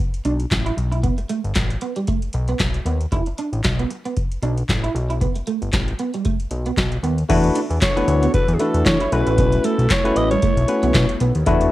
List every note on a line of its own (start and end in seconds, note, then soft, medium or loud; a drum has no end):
0.14 closed hi-hat soft
0.25 0.46 B1 loud
0.25 0.35 D4 medium
0.25 closed hi-hat medium
0.40 closed hi-hat soft
0.51 0.72 A1 medium
0.51 kick loud
0.51 snare loud
0.51 clap medium
0.51 closed hi-hat medium
0.66 0.74 E4 medium
0.66 closed hi-hat soft
0.77 1.09 B1 loud
0.77 muted clean electric guitar stroke soft
0.77 closed hi-hat medium
0.92 1.00 E4 medium
0.92 closed hi-hat soft
1.03 1.13 B3 medium
1.03 kick loud
1.03 closed hi-hat medium
1.18 muted clean electric guitar stroke soft
1.18 closed hi-hat soft
1.29 1.40 A3 medium
1.29 closed hi-hat medium
1.44 1.53 G1 medium
1.44 closed hi-hat soft
1.55 1.76 A1 medium
1.55 muted clean electric guitar stroke soft
1.55 kick loud
1.55 snare loud
1.55 clap medium
1.55 closed hi-hat loud
1.70 closed hi-hat medium
1.81 1.92 B3 medium
1.81 closed hi-hat medium
1.96 2.04 G3 medium
1.96 closed hi-hat medium
2.07 2.18 A3 medium
2.07 kick loud
2.07 closed hi-hat medium
2.22 closed hi-hat soft
2.33 2.55 B1 medium
2.33 muted clean electric guitar stroke soft
2.33 closed hi-hat medium
2.48 2.56 B3 medium
2.48 closed hi-hat soft
2.59 2.80 B1 medium
2.59 kick loud
2.59 snare loud
2.59 clap medium
2.59 closed hi-hat medium
2.74 closed hi-hat medium
2.86 3.06 D#2 loud
2.86 2.96 B3 medium
2.86 closed hi-hat medium
3.01 closed hi-hat medium
3.12 3.24 E1 loud
3.12 3.22 E4 medium
3.12 kick loud
3.12 closed hi-hat medium
3.26 muted clean electric guitar stroke soft
3.26 closed hi-hat soft
3.38 3.48 D4 medium
3.38 closed hi-hat medium
3.53 3.62 A1 medium
3.53 closed hi-hat soft
3.64 3.85 B1 medium
3.64 kick loud
3.64 snare loud
3.64 clap medium
3.64 closed hi-hat loud
3.79 3.87 B3 medium
3.79 closed hi-hat soft
3.91 muted clean electric guitar stroke soft
3.91 closed hi-hat medium
4.05 4.13 B3 medium
4.05 closed hi-hat soft
4.17 kick loud
4.17 closed hi-hat medium
4.32 closed hi-hat soft
4.42 4.63 B1 loud
4.42 4.53 D4 medium
4.42 closed hi-hat medium
4.58 closed hi-hat soft
4.69 4.89 A1 medium
4.69 kick medium
4.69 snare loud
4.69 clap medium
4.69 closed hi-hat medium
4.84 4.91 E4 medium
4.84 closed hi-hat medium
4.95 5.27 B1 loud
4.95 muted clean electric guitar stroke soft
4.95 closed hi-hat medium
5.10 5.18 E4 medium
5.10 closed hi-hat soft
5.21 5.31 B3 medium
5.21 kick loud
5.21 closed hi-hat medium
5.35 muted clean electric guitar stroke soft
5.35 closed hi-hat soft
5.47 5.57 A3 medium
5.47 closed hi-hat medium
5.62 5.71 G1 medium
5.62 closed hi-hat soft
5.73 5.93 A1 medium
5.73 muted clean electric guitar stroke soft
5.73 kick loud
5.73 snare loud
5.73 clap medium
5.73 closed hi-hat loud
5.88 closed hi-hat soft
5.99 6.09 B3 medium
5.99 closed hi-hat medium
6.14 6.22 G3 medium
6.14 closed hi-hat medium
6.25 6.35 A3 medium
6.25 kick loud
6.25 closed hi-hat medium
6.40 closed hi-hat soft
6.51 6.72 B1 loud
6.51 muted clean electric guitar stroke soft
6.51 closed hi-hat medium
6.66 6.74 B3 medium
6.66 closed hi-hat soft
6.77 6.98 B1 medium
6.77 kick medium
6.77 snare loud
6.77 clap medium
6.77 closed hi-hat medium
6.92 closed hi-hat medium
7.03 7.24 D#2 medium
7.03 7.13 B3 medium
7.03 closed hi-hat medium
7.18 closed hi-hat medium
7.29 7.50 E2 loud
7.29 9.10 E3 medium
7.29 7.59 A3 loud
7.29 11.72 B3 medium
7.29 7.59 D4 medium
7.29 9.10 D4 medium
7.29 7.59 E4 loud
7.29 7.40 E4 loud
7.29 9.10 F#4 medium
7.29 7.59 F#4 medium
7.29 9.10 A4 medium
7.29 7.59 B4 loud
7.29 kick loud
7.29 closed hi-hat medium
7.29 crash loud
7.44 muted clean electric guitar stroke soft
7.44 closed hi-hat medium
7.55 7.66 D4 medium
7.55 closed hi-hat loud
7.70 7.79 E2 loud
7.70 closed hi-hat medium
7.82 8.30 C#5 medium
7.82 kick loud
7.82 snare loud
7.82 clap medium
7.82 closed hi-hat loud
7.96 8.25 A3 medium
7.96 8.04 B3 medium
7.96 8.25 D4 medium
7.96 8.25 E4 medium
7.96 8.26 F#4 medium
7.96 8.26 B4 loud
7.96 closed hi-hat medium
8.07 8.28 D2 loud
8.07 muted clean electric guitar stroke soft
8.07 closed hi-hat medium
8.23 8.31 B3 medium
8.23 closed hi-hat medium
8.34 8.55 B4 loud
8.34 kick loud
8.34 closed hi-hat medium
8.48 8.57 E2 loud
8.48 closed hi-hat medium
8.54 8.62 G#4 medium
8.59 8.96 A3 medium
8.59 8.96 D4 medium
8.59 8.70 D4 medium
8.59 8.96 E4 medium
8.59 8.96 F#4 medium
8.59 8.85 A4 medium
8.59 8.96 B4 medium
8.59 closed hi-hat medium
8.74 8.83 E2 medium
8.74 closed hi-hat medium
8.86 8.97 E3 loud
8.86 9.14 C#5 medium
8.86 kick loud
8.86 snare loud
8.86 clap medium
8.86 closed hi-hat medium
9.00 9.09 E4 medium
9.00 closed hi-hat medium
9.12 9.24 B1 loud
9.12 9.86 A3 medium
9.12 11.45 A3 medium
9.12 9.86 C#4 medium
9.12 9.86 E4 medium
9.12 11.45 E4 loud
9.12 9.86 F#4 medium
9.12 9.67 B4 loud
9.12 9.86 B4 loud
9.12 muted clean electric guitar stroke soft
9.12 closed hi-hat medium
9.27 9.39 A1 medium
9.27 9.35 E4 medium
9.27 closed hi-hat medium
9.38 9.59 B1 loud
9.38 9.48 B3 loud
9.38 kick loud
9.38 closed hi-hat medium
9.52 muted clean electric guitar stroke soft
9.52 closed hi-hat medium
9.64 9.74 A3 medium
9.64 9.93 A4 medium
9.64 closed hi-hat medium
9.78 9.88 B1 loud
9.78 closed hi-hat medium
9.90 10.18 C#5 loud
9.90 muted clean electric guitar stroke soft
9.90 kick loud
9.90 snare loud
9.90 clap loud
9.90 closed hi-hat loud
10.04 10.34 A3 medium
10.04 10.34 C#4 medium
10.04 10.34 E4 medium
10.04 10.34 F#4 medium
10.04 10.34 B4 medium
10.04 closed hi-hat soft
10.16 10.37 A1 loud
10.16 10.27 B3 medium
10.16 10.30 D#5 loud
10.16 closed hi-hat medium
10.31 10.39 G3 medium
10.31 11.17 C#5 loud
10.31 closed hi-hat medium
10.42 10.53 A3 medium
10.42 kick loud
10.42 closed hi-hat medium
10.57 10.66 B1 loud
10.57 closed hi-hat medium
10.68 11.05 A3 medium
10.68 11.05 C#4 medium
10.68 11.05 E4 medium
10.68 11.05 F#4 medium
10.68 11.05 B4 medium
10.68 muted clean electric guitar stroke soft
10.68 closed hi-hat medium
10.83 10.92 B1 loud
10.83 10.91 B3 medium
10.83 closed hi-hat soft
10.94 11.06 B2 loud
10.94 kick loud
10.94 snare loud
10.94 clap medium
10.94 closed hi-hat medium
11.09 closed hi-hat medium
11.20 11.32 B1 medium
11.20 11.31 B3 medium
11.20 closed hi-hat medium
11.35 11.44 D#2 medium
11.35 closed hi-hat medium
11.46 11.67 E2 loud
11.46 11.72 E3 medium
11.46 11.72 A3 loud
11.46 11.72 D4 medium
11.46 11.72 E4 loud
11.46 11.57 E4 medium
11.46 11.72 F#4 medium
11.46 11.72 A4 medium
11.46 11.72 B4 loud
11.46 kick loud
11.46 closed hi-hat medium
11.61 muted clean electric guitar stroke soft
11.61 closed hi-hat medium